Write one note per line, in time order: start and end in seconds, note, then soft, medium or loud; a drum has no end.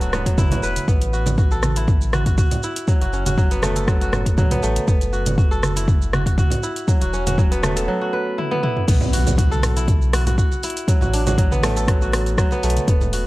0.00 0.37 D1 medium
0.00 0.25 F#3 medium
0.00 1.63 A3 loud
0.00 0.13 B3 loud
0.00 0.81 D4 medium
0.00 0.19 E4 medium
0.00 0.51 F#4 medium
0.00 1.08 A4 medium
0.00 closed hi-hat soft
0.00 shaker medium
0.13 0.88 B3 medium
0.13 cross-stick medium
0.13 muted conga soft
0.13 low conga medium
0.13 shaker medium
0.26 0.93 F#3 medium
0.26 kick medium
0.26 closed hi-hat medium
0.26 shaker medium
0.38 0.54 G1 medium
0.38 1.76 E4 loud
0.38 kick loud
0.38 high conga medium
0.38 low conga medium
0.38 shaker medium
0.51 1.13 F#4 medium
0.51 closed hi-hat soft
0.51 muted conga soft
0.51 high conga loud
0.51 low conga loud
0.51 shaker medium
0.63 0.79 E1 medium
0.63 1.86 B4 loud
0.63 shaker loud
0.76 closed hi-hat medium
0.76 high conga medium
0.76 shaker medium
0.88 2.43 A1 loud
0.88 2.75 B3 medium
0.88 kick loud
0.88 shaker medium
1.02 closed hi-hat soft
1.02 muted conga soft
1.02 shaker soft
1.13 1.38 F#4 medium
1.13 shaker medium
1.26 closed hi-hat medium
1.26 high conga loud
1.26 low conga medium
1.26 shaker medium
1.38 2.13 F#4 medium
1.38 kick loud
1.38 muted conga soft
1.38 shaker soft
1.51 2.83 A4 loud
1.51 shaker medium
1.63 cross-stick medium
1.63 high conga loud
1.63 shaker medium
1.76 2.63 E4 medium
1.76 closed hi-hat medium
1.76 muted conga medium
1.76 shaker medium
1.88 kick loud
1.88 high conga medium
1.88 shaker soft
2.01 shaker medium
2.13 2.26 F#4 medium
2.13 cross-stick medium
2.13 muted conga soft
2.13 high conga loud
2.13 shaker medium
2.26 2.38 F#4 medium
2.26 kick medium
2.26 closed hi-hat medium
2.26 shaker medium
2.38 3.01 F#4 medium
2.38 kick loud
2.38 high conga medium
2.38 shaker medium
2.51 closed hi-hat soft
2.51 muted conga soft
2.51 low conga medium
2.51 shaker medium
2.63 4.20 E4 medium
2.63 shaker medium
2.76 closed hi-hat medium
2.76 shaker medium
2.88 3.37 F#3 medium
2.88 kick loud
2.88 shaker medium
3.01 4.43 F#1 medium
3.01 3.26 F#4 medium
3.01 closed hi-hat soft
3.01 muted conga soft
3.01 shaker soft
3.13 4.87 C#4 medium
3.13 shaker soft
3.26 4.01 F#4 medium
3.26 closed hi-hat medium
3.26 high conga loud
3.26 low conga medium
3.26 shaker medium
3.38 3.87 F#3 loud
3.38 kick loud
3.38 muted conga soft
3.38 shaker soft
3.51 4.51 B3 loud
3.51 closed hi-hat soft
3.51 shaker medium
3.62 4.63 A3 loud
3.62 cross-stick medium
3.62 high conga medium
3.62 shaker medium
3.76 5.08 A4 medium
3.76 closed hi-hat medium
3.76 muted conga soft
3.76 shaker medium
3.88 4.37 F#3 medium
3.88 kick loud
3.88 cross-stick medium
3.88 shaker medium
4.01 5.12 F#4 medium
4.01 closed hi-hat soft
4.01 shaker medium
4.13 cross-stick medium
4.13 muted conga soft
4.13 low conga medium
4.13 shaker medium
4.26 kick medium
4.26 closed hi-hat medium
4.26 shaker medium
4.37 4.93 F#3 loud
4.37 kick loud
4.37 high conga medium
4.37 low conga medium
4.37 shaker medium
4.51 4.88 B3 loud
4.51 closed hi-hat soft
4.51 muted conga medium
4.51 high conga loud
4.51 low conga medium
4.51 shaker soft
4.63 4.79 A1 loud
4.63 6.63 A3 loud
4.63 shaker medium
4.76 closed hi-hat medium
4.76 high conga medium
4.76 shaker soft
4.88 6.43 F#1 loud
4.88 6.74 B3 medium
4.88 kick loud
4.88 shaker medium
5.01 closed hi-hat soft
5.01 muted conga soft
5.01 shaker soft
5.13 5.37 F#4 medium
5.13 shaker soft
5.26 closed hi-hat medium
5.26 high conga medium
5.26 low conga medium
5.26 shaker medium
5.38 6.13 F#4 medium
5.38 kick loud
5.38 muted conga soft
5.38 shaker soft
5.51 6.83 A4 loud
5.51 shaker soft
5.63 cross-stick medium
5.63 high conga medium
5.63 shaker medium
5.76 6.63 E4 medium
5.76 closed hi-hat medium
5.76 muted conga medium
5.76 shaker medium
5.88 kick loud
5.88 high conga medium
5.88 shaker soft
6.02 shaker medium
6.13 6.26 F#4 medium
6.13 cross-stick medium
6.13 muted conga soft
6.13 high conga loud
6.13 shaker soft
6.26 6.38 F#4 medium
6.26 kick medium
6.26 closed hi-hat medium
6.26 shaker soft
6.38 7.01 F#4 medium
6.38 kick loud
6.38 high conga medium
6.38 shaker medium
6.50 closed hi-hat soft
6.50 muted conga medium
6.50 low conga medium
6.50 shaker soft
6.63 8.20 E4 medium
6.63 shaker medium
6.76 closed hi-hat medium
6.76 shaker soft
6.88 7.37 F#3 medium
6.88 kick loud
6.88 shaker medium
7.01 7.88 E1 medium
7.01 7.26 F#4 medium
7.01 closed hi-hat soft
7.01 muted conga medium
7.01 shaker soft
7.13 8.87 C#4 medium
7.13 shaker soft
7.26 8.01 F#4 medium
7.26 closed hi-hat medium
7.26 high conga loud
7.26 low conga medium
7.26 shaker medium
7.38 7.87 F#3 loud
7.38 kick loud
7.38 muted conga soft
7.38 shaker soft
7.51 8.51 B3 loud
7.51 closed hi-hat soft
7.51 shaker soft
7.63 9.63 A3 loud
7.63 cross-stick medium
7.63 high conga loud
7.63 shaker medium
7.76 9.08 A4 medium
7.76 closed hi-hat medium
7.76 muted conga medium
7.76 shaker medium
7.88 8.93 F#3 medium
8.01 9.13 F#4 medium
8.13 9.36 B4 medium
8.38 8.62 E4 medium
8.38 high tom medium
8.51 8.87 B3 loud
8.51 high tom medium
8.63 9.76 E4 medium
8.63 mid tom medium
8.77 mid tom medium
8.88 10.43 B1 loud
8.88 10.74 B3 medium
8.88 kick loud
8.88 closed hi-hat medium
8.88 crash loud
8.88 impact medium
8.88 shaker medium
9.01 muted conga medium
9.01 low conga loud
9.01 shaker medium
9.13 9.38 F#4 medium
9.13 open hi-hat medium
9.13 shaker medium
9.27 closed hi-hat soft
9.27 high conga medium
9.27 low conga loud
9.27 shaker medium
9.37 10.13 F#4 medium
9.37 kick loud
9.37 closed hi-hat medium
9.37 muted conga soft
9.37 shaker medium
9.51 10.83 A4 loud
9.51 high conga medium
9.51 shaker medium
9.63 cross-stick loud
9.63 open hi-hat medium
9.63 low conga medium
9.63 shaker medium
9.77 10.63 E4 medium
9.77 closed hi-hat soft
9.77 muted conga medium
9.77 shaker loud
9.88 kick loud
9.88 closed hi-hat medium
9.88 high conga medium
9.88 shaker medium
10.02 shaker medium
10.13 10.26 F#4 medium
10.13 cross-stick loud
10.13 open hi-hat medium
10.13 muted conga soft
10.13 high conga medium
10.13 shaker medium
10.27 10.38 F#4 medium
10.27 closed hi-hat soft
10.27 low conga medium
10.27 shaker medium
10.38 11.02 F#4 medium
10.38 kick loud
10.38 shaker medium
10.52 muted conga medium
10.52 shaker medium
10.63 12.20 E4 medium
10.63 open hi-hat medium
10.63 shaker medium
10.70 closed hi-hat medium
10.77 closed hi-hat soft
10.77 shaker medium
10.88 11.37 F#3 medium
10.88 kick loud
10.88 closed hi-hat medium
10.88 shaker medium
11.01 12.43 A1 medium
11.01 11.26 F#4 medium
11.01 muted conga soft
11.01 low conga medium
11.01 shaker medium
11.13 12.81 D4 medium
11.13 open hi-hat medium
11.13 shaker medium
11.27 12.01 F#4 medium
11.27 closed hi-hat soft
11.27 high conga medium
11.27 low conga loud
11.27 shaker medium
11.38 11.87 F#3 loud
11.38 kick loud
11.38 closed hi-hat medium
11.38 muted conga soft
11.38 shaker medium
11.51 12.52 B3 loud
11.51 high conga medium
11.51 shaker medium
11.63 12.63 A3 loud
11.63 cross-stick loud
11.63 open hi-hat medium
11.63 low conga medium
11.63 shaker loud
11.77 13.08 A4 medium
11.77 closed hi-hat soft
11.77 muted conga medium
11.77 shaker loud
11.88 12.37 F#3 medium
11.88 kick loud
11.88 cross-stick medium
11.88 closed hi-hat medium
11.88 shaker medium
12.02 13.13 F#4 medium
12.02 shaker medium
12.12 cross-stick loud
12.12 open hi-hat medium
12.12 muted conga soft
12.12 shaker medium
12.26 closed hi-hat soft
12.26 shaker medium
12.38 12.93 F#3 loud
12.38 kick loud
12.38 cross-stick medium
12.38 shaker loud
12.51 12.88 B3 loud
12.51 muted conga medium
12.51 shaker medium
12.63 12.79 B1 loud
12.63 13.27 A3 loud
12.63 open hi-hat medium
12.63 shaker loud
12.70 closed hi-hat medium
12.76 closed hi-hat soft
12.76 high conga medium
12.76 shaker medium
12.88 13.27 E1 loud
12.88 13.27 B3 medium
12.88 kick loud
12.88 closed hi-hat medium
12.88 shaker loud
13.01 muted conga medium
13.01 low conga medium
13.01 shaker medium
13.13 13.27 F#4 medium
13.13 open hi-hat medium
13.13 shaker medium